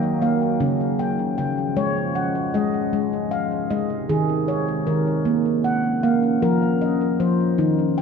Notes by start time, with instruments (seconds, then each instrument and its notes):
Already playing: ambient pad D#3 F#3 A#3, handpan A#3 D#5 G5
0.22 handpan A#3 F5
0.60 handpan C#3 C#4, ambient pad C#3 F3 G#3
0.99 handpan G5
1.38 handpan C#3 G5
1.77 handpan G#3 C#5
2.15 handpan F#5
2.54 handpan G#3 D#5
2.93 ambient pad C3 D#3, handpan G#3
3.31 handpan F5
3.70 handpan G#3 D#5
4.09 handpan D#3 G#4
4.48 handpan C#5
4.87 handpan D#3 A#4
5.25 ambient pad F3 A#3 C#4, handpan A#3
5.64 handpan F#5
6.03 handpan A#3 F5
6.42 handpan F3 A#4
6.82 handpan D#5
7.20 handpan F3 C5
7.58 handpan D#3 D#4, ambient pad D#3 F#3
7.98 handpan G5